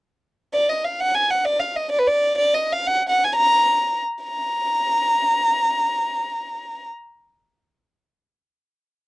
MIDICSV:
0, 0, Header, 1, 2, 480
1, 0, Start_track
1, 0, Tempo, 461538
1, 587, Time_signature, 2, 2, 24, 8
1, 9439, End_track
2, 0, Start_track
2, 0, Title_t, "Violin"
2, 0, Program_c, 0, 40
2, 556, Note_on_c, 0, 74, 86
2, 722, Note_on_c, 0, 75, 67
2, 738, Note_off_c, 0, 74, 0
2, 877, Note_on_c, 0, 77, 64
2, 893, Note_off_c, 0, 75, 0
2, 1044, Note_on_c, 0, 78, 84
2, 1059, Note_off_c, 0, 77, 0
2, 1195, Note_on_c, 0, 80, 86
2, 1210, Note_off_c, 0, 78, 0
2, 1355, Note_on_c, 0, 78, 74
2, 1371, Note_off_c, 0, 80, 0
2, 1507, Note_on_c, 0, 74, 85
2, 1522, Note_off_c, 0, 78, 0
2, 1661, Note_on_c, 0, 77, 68
2, 1676, Note_off_c, 0, 74, 0
2, 1831, Note_on_c, 0, 75, 61
2, 1846, Note_off_c, 0, 77, 0
2, 1979, Note_off_c, 0, 75, 0
2, 1985, Note_on_c, 0, 74, 84
2, 2069, Note_on_c, 0, 71, 75
2, 2085, Note_off_c, 0, 74, 0
2, 2154, Note_on_c, 0, 74, 84
2, 2170, Note_off_c, 0, 71, 0
2, 2468, Note_off_c, 0, 74, 0
2, 2474, Note_on_c, 0, 74, 97
2, 2644, Note_on_c, 0, 75, 79
2, 2659, Note_off_c, 0, 74, 0
2, 2837, Note_on_c, 0, 77, 80
2, 2852, Note_off_c, 0, 75, 0
2, 2985, Note_on_c, 0, 78, 94
2, 3000, Note_off_c, 0, 77, 0
2, 3149, Note_off_c, 0, 78, 0
2, 3214, Note_on_c, 0, 78, 79
2, 3371, Note_on_c, 0, 80, 77
2, 3386, Note_off_c, 0, 78, 0
2, 3475, Note_off_c, 0, 80, 0
2, 3491, Note_on_c, 0, 82, 109
2, 4159, Note_off_c, 0, 82, 0
2, 4400, Note_on_c, 0, 82, 87
2, 7124, Note_off_c, 0, 82, 0
2, 9439, End_track
0, 0, End_of_file